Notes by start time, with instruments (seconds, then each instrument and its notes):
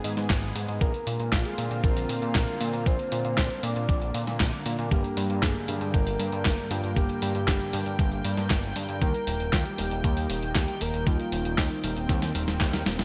Already playing: analog synth pad D#3 G#3 B3 G#4
0.04 analog synth bass G#2, open hi-hat
0.17 analog synth bass G#2, snare, closed hi-hat, tambourine
0.30 analog synth bass G#1, kick, snare, clap, closed hi-hat, tambourine
0.43 closed hi-hat, tambourine
0.55 analog synth bass G#2, open hi-hat
0.68 analog synth bass G#2, closed hi-hat, tambourine
0.81 analog synth bass A#1, analog synth pad D3 A#3 C4 F4, soft synth lead A#4, kick, closed hi-hat, tambourine
0.94 soft synth lead A#4, closed hi-hat, tambourine
1.07 analog synth bass A#2, open hi-hat
1.20 analog synth bass A#2, closed hi-hat, tambourine
1.32 analog synth bass A#1, soft synth lead F4, kick, snare, clap, closed hi-hat, tambourine
1.45 soft synth lead G#4, closed hi-hat, tambourine
1.58 analog synth bass A#2, open hi-hat
1.71 analog synth bass A#2, closed hi-hat, tambourine
1.84 analog synth bass A#1, soft synth lead A#4, kick, closed hi-hat, tambourine
1.97 open hi-hat, tambourine
2.09 analog synth bass A#2, open hi-hat
2.22 analog synth bass A#2, closed hi-hat, tambourine
2.35 analog synth bass A#1, kick, snare, clap, closed hi-hat, tambourine
2.48 closed hi-hat, tambourine
2.61 analog synth bass A#2, open hi-hat
2.73 analog synth bass A#2, closed hi-hat, tambourine
2.86 analog synth bass A#1, soft synth lead C5, kick, closed hi-hat, tambourine
2.99 closed hi-hat, tambourine
3.12 analog synth bass A#2, open hi-hat
3.25 analog synth bass A#2, closed hi-hat, tambourine
3.38 analog synth bass A#1, kick, snare, clap, closed hi-hat, tambourine
3.50 closed hi-hat, tambourine
3.63 analog synth bass A#2, soft synth lead D5, open hi-hat
3.76 analog synth bass A#2, closed hi-hat, tambourine
3.89 analog synth bass A#1, kick, closed hi-hat, tambourine
4.02 closed hi-hat, tambourine
4.14 analog synth bass A#2, open hi-hat
4.27 analog synth bass A#2, snare, closed hi-hat, tambourine
4.40 analog synth bass A#1, kick, snare, clap, closed hi-hat, tambourine
4.53 closed hi-hat, tambourine
4.66 analog synth bass A#2, open hi-hat
4.79 analog synth bass A#2, closed hi-hat, tambourine
4.91 analog synth bass G1, tine electric piano G2 G3 A#3 D4 A#4, soft synth lead G4, analog synth pad G5, kick, closed hi-hat, tambourine
5.04 closed hi-hat, tambourine
5.17 analog synth bass G2, open hi-hat
5.30 analog synth bass G2, closed hi-hat, tambourine
5.43 analog synth bass G1, soft synth lead G#4, kick, snare, clap, closed hi-hat, tambourine
5.55 closed hi-hat, tambourine
5.68 analog synth bass G2, tine electric piano G2 G3 A#3 D4 A#4, open hi-hat
5.81 analog synth bass G2, closed hi-hat, tambourine
5.94 analog synth bass G1, soft synth lead A#4, kick, closed hi-hat, tambourine
6.07 open hi-hat, tambourine
6.19 analog synth bass G2, open hi-hat
6.32 analog synth bass G2, closed hi-hat, tambourine
6.45 analog synth bass G1, kick, snare, clap, closed hi-hat, tambourine
6.58 closed hi-hat, tambourine
6.71 analog synth bass G2, soft synth lead F4, open hi-hat
6.84 analog synth bass G2, closed hi-hat, tambourine
6.96 analog synth bass G1, tine electric piano G2 G3 A#3 D4 A#4, soft synth lead G4, kick, closed hi-hat, tambourine
7.09 closed hi-hat, tambourine
7.22 analog synth bass G2, soft synth lead G4, open hi-hat
7.35 analog synth bass G2, closed hi-hat, tambourine
7.48 analog synth bass G1, kick, snare, clap, closed hi-hat, tambourine
7.60 closed hi-hat, tambourine
7.73 tine electric piano G2 G3 A#3 D4 A#4, analog synth bass G2, open hi-hat
7.86 analog synth bass G2, closed hi-hat, tambourine
7.99 analog synth bass G1, kick, closed hi-hat, tambourine
8.12 closed hi-hat, tambourine
8.25 analog synth bass G2, open hi-hat
8.37 analog synth bass G2, snare, closed hi-hat, tambourine
8.50 analog synth bass G1, kick, snare, clap, closed hi-hat, tambourine
8.63 closed hi-hat, tambourine
8.76 analog synth bass G2, open hi-hat
8.89 analog synth bass G2, closed hi-hat, tambourine
9.02 analog synth bass D#2, analog synth pad D#3, tine electric piano G3 A#3 D#4 A#4, soft synth lead A#4, kick, closed hi-hat, tambourine
9.14 soft synth lead A#4, closed hi-hat, tambourine
9.27 analog synth bass D#1, open hi-hat
9.40 analog synth bass D#1, closed hi-hat, tambourine
9.53 analog synth bass D#2, soft synth lead F4, kick, snare, clap, closed hi-hat, tambourine
9.66 soft synth lead G4, closed hi-hat, tambourine
9.78 analog synth bass D#1, tine electric piano G3 A#3 D#4 A#4, open hi-hat
9.91 analog synth bass D#1, closed hi-hat, tambourine
10.04 analog synth bass D#2, soft synth lead G4, kick, closed hi-hat, tambourine
10.17 open hi-hat, tambourine
10.30 analog synth bass D#1, open hi-hat
10.43 analog synth bass D#1, closed hi-hat, tambourine
10.55 analog synth bass D#2, soft synth lead G4, kick, snare, clap, closed hi-hat, tambourine
10.68 closed hi-hat, tambourine
10.81 analog synth bass D#1, soft synth lead A#4, open hi-hat
10.94 analog synth bass D#1, closed hi-hat, tambourine
11.07 analog synth bass D#2, tine electric piano G3 A#3 D#4 A#4, analog synth pad C4, soft synth lead F4, kick, closed hi-hat, tambourine
11.20 closed hi-hat, tambourine
11.32 analog synth bass D#1, open hi-hat
11.45 analog synth bass D#1, closed hi-hat, tambourine
11.58 analog synth bass D#2, soft synth lead D#4, kick, snare, clap, closed hi-hat, tambourine
11.71 closed hi-hat, tambourine
11.84 analog synth bass D#1, tine electric piano G3 A#3 D#4 A#4, open hi-hat
11.96 analog synth bass D#1, closed hi-hat, tambourine
12.09 analog synth bass D#2, kick, snare, closed hi-hat, tambourine
12.22 snare, open hi-hat, tambourine
12.35 analog synth bass D#1, tine electric piano G3 A#3 D#4 A#4, open hi-hat
12.48 analog synth bass D#1, snare, closed hi-hat, tambourine
12.61 analog synth bass D#2, kick, snare, clap, closed hi-hat, tambourine
12.73 tine electric piano G3 A#3 D#4 A#4, snare, closed hi-hat, tambourine
12.86 analog synth bass D#1, snare, open hi-hat
12.99 analog synth bass D#1, snare, closed hi-hat, tambourine